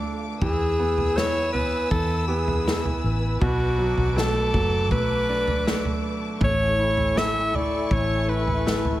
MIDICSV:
0, 0, Header, 1, 7, 480
1, 0, Start_track
1, 0, Key_signature, 3, "major"
1, 0, Tempo, 750000
1, 266, Time_signature, 4, 2, 24, 8
1, 5760, End_track
2, 0, Start_track
2, 0, Title_t, "String section"
2, 0, Program_c, 0, 48
2, 0, Note_on_c, 0, 57, 67
2, 0, Note_on_c, 0, 77, 58
2, 0, Note_on_c, 0, 86, 75
2, 243, Note_off_c, 0, 57, 0
2, 248, Note_off_c, 0, 86, 0
2, 249, Note_off_c, 0, 77, 0
2, 274, Note_on_c, 0, 71, 67
2, 274, Note_on_c, 0, 80, 66
2, 277, Note_on_c, 0, 88, 77
2, 2171, Note_off_c, 0, 80, 0
2, 2172, Note_off_c, 0, 88, 0
2, 2186, Note_on_c, 0, 81, 58
2, 2188, Note_on_c, 0, 86, 77
2, 4084, Note_off_c, 0, 71, 0
2, 4087, Note_off_c, 0, 81, 0
2, 4088, Note_off_c, 0, 86, 0
2, 4106, Note_on_c, 0, 69, 65
2, 4106, Note_on_c, 0, 80, 63
2, 4108, Note_on_c, 0, 85, 75
2, 5760, Note_off_c, 0, 69, 0
2, 5760, Note_off_c, 0, 80, 0
2, 5760, Note_off_c, 0, 85, 0
2, 5760, End_track
3, 0, Start_track
3, 0, Title_t, "Alto saxophone"
3, 0, Program_c, 1, 65
3, 269, Note_on_c, 1, 68, 100
3, 746, Note_on_c, 1, 73, 104
3, 756, Note_off_c, 1, 68, 0
3, 975, Note_off_c, 1, 73, 0
3, 978, Note_on_c, 1, 71, 89
3, 1205, Note_off_c, 1, 71, 0
3, 1222, Note_on_c, 1, 69, 88
3, 1447, Note_off_c, 1, 69, 0
3, 1456, Note_on_c, 1, 68, 77
3, 1915, Note_off_c, 1, 68, 0
3, 2183, Note_on_c, 1, 66, 95
3, 2668, Note_on_c, 1, 69, 98
3, 2678, Note_off_c, 1, 66, 0
3, 3143, Note_off_c, 1, 69, 0
3, 3147, Note_on_c, 1, 71, 98
3, 3841, Note_off_c, 1, 71, 0
3, 4125, Note_on_c, 1, 73, 114
3, 4594, Note_on_c, 1, 76, 97
3, 4604, Note_off_c, 1, 73, 0
3, 4835, Note_on_c, 1, 74, 90
3, 4845, Note_off_c, 1, 76, 0
3, 5070, Note_on_c, 1, 73, 92
3, 5080, Note_off_c, 1, 74, 0
3, 5305, Note_on_c, 1, 71, 79
3, 5315, Note_off_c, 1, 73, 0
3, 5760, Note_off_c, 1, 71, 0
3, 5760, End_track
4, 0, Start_track
4, 0, Title_t, "French horn section"
4, 0, Program_c, 2, 60
4, 4101, Note_on_c, 2, 64, 85
4, 5760, Note_off_c, 2, 64, 0
4, 5760, End_track
5, 0, Start_track
5, 0, Title_t, "Grand piano"
5, 0, Program_c, 3, 0
5, 0, Control_c, 3, 64, 127
5, 0, Note_on_c, 3, 50, 71
5, 0, Note_on_c, 3, 57, 63
5, 0, Note_on_c, 3, 62, 55
5, 243, Note_off_c, 3, 50, 0
5, 245, Note_off_c, 3, 57, 0
5, 252, Note_off_c, 3, 62, 0
5, 268, Note_on_c, 3, 52, 66
5, 273, Control_c, 3, 64, 0
5, 385, Control_c, 3, 64, 127
5, 509, Note_on_c, 3, 59, 55
5, 746, Note_on_c, 3, 64, 55
5, 975, Note_off_c, 3, 59, 0
5, 985, Note_on_c, 3, 59, 57
5, 1215, Note_off_c, 3, 64, 0
5, 1225, Note_on_c, 3, 64, 61
5, 1453, Note_off_c, 3, 59, 0
5, 1463, Note_on_c, 3, 59, 65
5, 1690, Note_off_c, 3, 64, 0
5, 1700, Note_on_c, 3, 64, 62
5, 2161, Note_off_c, 3, 52, 0
5, 2163, Note_off_c, 3, 59, 0
5, 2168, Note_off_c, 3, 64, 0
5, 2186, Note_on_c, 3, 47, 65
5, 2193, Control_c, 3, 64, 0
5, 2296, Control_c, 3, 64, 127
5, 2421, Note_on_c, 3, 54, 55
5, 2664, Note_on_c, 3, 57, 55
5, 2898, Note_off_c, 3, 54, 0
5, 2908, Note_on_c, 3, 54, 55
5, 3136, Note_off_c, 3, 57, 0
5, 3146, Note_on_c, 3, 57, 53
5, 3387, Note_on_c, 3, 62, 63
5, 3618, Note_off_c, 3, 57, 0
5, 3627, Note_on_c, 3, 57, 54
5, 3841, Note_off_c, 3, 54, 0
5, 4080, Note_off_c, 3, 47, 0
5, 4085, Note_off_c, 3, 62, 0
5, 4092, Note_off_c, 3, 57, 0
5, 4109, Note_on_c, 3, 57, 64
5, 4114, Control_c, 3, 64, 0
5, 4213, Control_c, 3, 64, 127
5, 4348, Note_on_c, 3, 64, 50
5, 4571, Note_off_c, 3, 57, 0
5, 4580, Note_on_c, 3, 57, 55
5, 4814, Note_off_c, 3, 64, 0
5, 4823, Note_on_c, 3, 64, 56
5, 5051, Note_off_c, 3, 57, 0
5, 5061, Note_on_c, 3, 57, 60
5, 5295, Note_off_c, 3, 64, 0
5, 5305, Note_on_c, 3, 64, 57
5, 5534, Note_off_c, 3, 57, 0
5, 5544, Note_on_c, 3, 57, 59
5, 5760, Note_off_c, 3, 57, 0
5, 5760, Note_off_c, 3, 64, 0
5, 5760, End_track
6, 0, Start_track
6, 0, Title_t, "Fingered electric bass"
6, 0, Program_c, 4, 33
6, 265, Note_on_c, 4, 40, 101
6, 1200, Note_off_c, 4, 40, 0
6, 1225, Note_on_c, 4, 40, 95
6, 1919, Note_off_c, 4, 40, 0
6, 1945, Note_on_c, 4, 33, 80
6, 2168, Note_off_c, 4, 33, 0
6, 2185, Note_on_c, 4, 35, 97
6, 2520, Note_off_c, 4, 35, 0
6, 2545, Note_on_c, 4, 35, 88
6, 2880, Note_off_c, 4, 35, 0
6, 2907, Note_on_c, 4, 30, 86
6, 3144, Note_off_c, 4, 30, 0
6, 3144, Note_on_c, 4, 35, 82
6, 3839, Note_off_c, 4, 35, 0
6, 4104, Note_on_c, 4, 33, 92
6, 5039, Note_off_c, 4, 33, 0
6, 5062, Note_on_c, 4, 33, 98
6, 5758, Note_off_c, 4, 33, 0
6, 5760, End_track
7, 0, Start_track
7, 0, Title_t, "Drums"
7, 266, Note_on_c, 9, 36, 98
7, 266, Note_on_c, 9, 43, 101
7, 330, Note_off_c, 9, 36, 0
7, 330, Note_off_c, 9, 43, 0
7, 626, Note_on_c, 9, 43, 62
7, 690, Note_off_c, 9, 43, 0
7, 754, Note_on_c, 9, 38, 112
7, 818, Note_off_c, 9, 38, 0
7, 989, Note_on_c, 9, 43, 57
7, 1053, Note_off_c, 9, 43, 0
7, 1224, Note_on_c, 9, 36, 93
7, 1227, Note_on_c, 9, 43, 56
7, 1288, Note_off_c, 9, 36, 0
7, 1291, Note_off_c, 9, 43, 0
7, 1586, Note_on_c, 9, 43, 72
7, 1650, Note_off_c, 9, 43, 0
7, 1713, Note_on_c, 9, 38, 104
7, 1777, Note_off_c, 9, 38, 0
7, 1825, Note_on_c, 9, 43, 57
7, 1889, Note_off_c, 9, 43, 0
7, 2185, Note_on_c, 9, 43, 96
7, 2186, Note_on_c, 9, 36, 107
7, 2249, Note_off_c, 9, 43, 0
7, 2250, Note_off_c, 9, 36, 0
7, 2545, Note_on_c, 9, 43, 58
7, 2609, Note_off_c, 9, 43, 0
7, 2676, Note_on_c, 9, 38, 106
7, 2740, Note_off_c, 9, 38, 0
7, 2905, Note_on_c, 9, 43, 58
7, 2906, Note_on_c, 9, 36, 87
7, 2969, Note_off_c, 9, 43, 0
7, 2970, Note_off_c, 9, 36, 0
7, 3143, Note_on_c, 9, 36, 89
7, 3145, Note_on_c, 9, 43, 57
7, 3207, Note_off_c, 9, 36, 0
7, 3209, Note_off_c, 9, 43, 0
7, 3505, Note_on_c, 9, 43, 69
7, 3569, Note_off_c, 9, 43, 0
7, 3632, Note_on_c, 9, 38, 95
7, 3696, Note_off_c, 9, 38, 0
7, 3745, Note_on_c, 9, 43, 64
7, 3809, Note_off_c, 9, 43, 0
7, 4101, Note_on_c, 9, 43, 103
7, 4104, Note_on_c, 9, 36, 108
7, 4165, Note_off_c, 9, 43, 0
7, 4168, Note_off_c, 9, 36, 0
7, 4462, Note_on_c, 9, 43, 62
7, 4526, Note_off_c, 9, 43, 0
7, 4592, Note_on_c, 9, 38, 115
7, 4656, Note_off_c, 9, 38, 0
7, 4825, Note_on_c, 9, 43, 53
7, 4889, Note_off_c, 9, 43, 0
7, 5062, Note_on_c, 9, 36, 90
7, 5064, Note_on_c, 9, 43, 56
7, 5126, Note_off_c, 9, 36, 0
7, 5128, Note_off_c, 9, 43, 0
7, 5423, Note_on_c, 9, 43, 68
7, 5487, Note_off_c, 9, 43, 0
7, 5550, Note_on_c, 9, 38, 97
7, 5614, Note_off_c, 9, 38, 0
7, 5663, Note_on_c, 9, 43, 67
7, 5727, Note_off_c, 9, 43, 0
7, 5760, End_track
0, 0, End_of_file